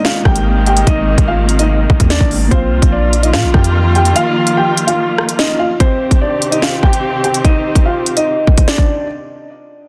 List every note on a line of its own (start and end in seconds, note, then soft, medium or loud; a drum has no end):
0.00 2.48 C3 medium
0.00 2.48 D#3 medium
0.00 2.48 G#3 medium
0.00 2.49 G#3 medium
0.00 2.46 A#3 medium
0.00 2.48 A#3 medium
0.00 2.47 C4 medium
0.05 0.23 F4 medium
0.05 0.22 F5 medium
0.05 snare loud
0.25 0.85 G#1 loud
0.25 0.65 G4 medium
0.25 0.64 G5 medium
0.25 kick loud
0.25 cross-stick medium
0.36 closed hi-hat medium
0.66 0.85 G4 medium
0.66 0.84 G5 medium
0.66 closed hi-hat soft
0.77 closed hi-hat medium
0.87 1.17 G#1 loud
0.87 1.26 D#4 medium
0.87 1.26 D#5 medium
0.87 kick loud
0.87 closed hi-hat medium
1.18 1.87 G#1 loud
1.18 kick loud
1.18 closed hi-hat medium
1.28 1.57 F4 medium
1.28 1.57 F5 medium
1.49 closed hi-hat medium
1.59 2.08 D#4 medium
1.59 2.07 D#5 medium
1.59 closed hi-hat medium
1.90 2.00 G#1 loud
1.90 kick loud
2.00 2.20 D#2 loud
2.00 kick loud
2.00 closed hi-hat medium
2.10 2.49 D4 medium
2.10 2.49 D5 medium
2.10 snare loud
2.10 closed hi-hat medium
2.20 2.50 G#1 loud
2.20 kick loud
2.31 open hi-hat medium
2.48 2.73 A#1 loud
2.48 5.77 D#3 medium
2.48 5.77 F3 medium
2.48 5.74 A#3 medium
2.48 5.77 A#3 medium
2.48 5.76 F4 medium
2.48 5.77 F4 medium
2.48 2.90 C5 loud
2.48 kick loud
2.48 closed hi-hat medium
2.52 2.90 C4 medium
2.52 5.77 F5 medium
2.72 2.82 C2 loud
2.82 3.35 A#1 loud
2.82 kick loud
2.82 closed hi-hat medium
2.92 3.22 D4 medium
2.92 3.21 D5 medium
3.13 closed hi-hat medium
3.23 3.32 D#4 medium
3.23 3.32 D#5 medium
3.23 closed hi-hat medium
3.33 3.45 A#2 loud
3.33 3.51 F4 medium
3.33 3.51 F5 medium
3.33 snare loud
3.44 3.53 A#1 loud
3.54 4.13 F2 loud
3.54 3.93 G4 medium
3.54 3.93 G5 medium
3.54 kick loud
3.54 cross-stick medium
3.64 closed hi-hat medium
3.95 4.13 G4 medium
3.95 4.13 G5 medium
3.95 closed hi-hat soft
4.05 closed hi-hat medium
4.16 4.55 F4 medium
4.16 4.54 F5 loud
4.16 closed hi-hat medium
4.47 closed hi-hat medium
4.57 4.86 G4 medium
4.57 4.86 G5 medium
4.77 closed hi-hat medium
4.87 5.36 F4 medium
4.87 5.36 F5 medium
4.87 closed hi-hat medium
5.18 cross-stick medium
5.29 closed hi-hat medium
5.39 5.57 D#4 medium
5.39 5.56 D#5 medium
5.39 snare loud
5.39 closed hi-hat medium
5.59 5.77 F4 medium
5.59 5.77 F5 medium
5.80 9.06 C3 medium
5.80 9.06 D#3 medium
5.80 9.06 C4 medium
5.80 6.19 C4 medium
5.80 9.06 G4 medium
5.80 6.19 C5 loud
5.80 kick loud
5.80 closed hi-hat medium
6.11 kick loud
6.11 closed hi-hat medium
6.21 6.51 D4 medium
6.21 6.50 D5 medium
6.42 closed hi-hat medium
6.51 6.61 D#4 medium
6.51 6.60 D#5 medium
6.51 closed hi-hat medium
6.62 6.80 F4 medium
6.62 6.80 F5 medium
6.62 snare loud
6.83 7.22 G4 medium
6.83 7.21 G5 medium
6.83 kick loud
6.93 closed hi-hat medium
7.24 7.42 G4 medium
7.24 7.41 G5 medium
7.24 closed hi-hat soft
7.34 closed hi-hat medium
7.45 7.84 D#4 medium
7.45 7.83 D#5 medium
7.45 kick loud
7.45 closed hi-hat medium
7.75 kick loud
7.75 closed hi-hat medium
7.85 8.15 F4 medium
7.85 8.14 F5 medium
8.06 closed hi-hat medium
8.17 8.65 D#4 medium
8.17 8.65 D#5 medium
8.17 closed hi-hat medium
8.47 kick loud
8.58 kick medium
8.58 closed hi-hat medium
8.68 9.07 D4 medium
8.68 9.06 D5 medium
8.68 snare loud
8.68 closed hi-hat medium
8.78 kick loud